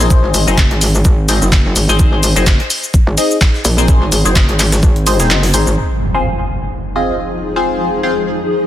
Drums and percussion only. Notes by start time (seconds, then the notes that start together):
0.00 shaker
0.10 kick, shaker
0.34 open hi-hat, shaker
0.47 shaker
0.58 kick, snare, clap, shaker
0.71 closed hi-hat
0.81 open hi-hat, shaker
0.95 shaker
1.05 kick, shaker
1.29 snare, open hi-hat, shaker
1.42 shaker
1.52 kick, snare, clap, shaker
1.76 open hi-hat, shaker
1.89 shaker
1.99 kick, shaker
2.23 open hi-hat, shaker
2.36 closed hi-hat, shaker
2.47 kick, snare, clap, shaker
2.60 closed hi-hat
2.70 open hi-hat, shaker
2.84 shaker
2.94 kick, shaker
3.18 open hi-hat, shaker
3.31 shaker
3.41 kick, snare, clap, shaker
3.54 snare
3.65 open hi-hat, shaker
3.78 shaker
3.88 kick, shaker
4.12 open hi-hat, shaker
4.26 shaker
4.36 kick, snare, clap, shaker
4.49 closed hi-hat
4.59 snare, clap, open hi-hat, shaker
4.72 snare, shaker
4.83 kick, shaker
4.96 closed hi-hat
5.06 open hi-hat, shaker
5.20 snare, shaker
5.30 clap, closed hi-hat, shaker
5.43 open hi-hat
5.54 open hi-hat, shaker
5.67 shaker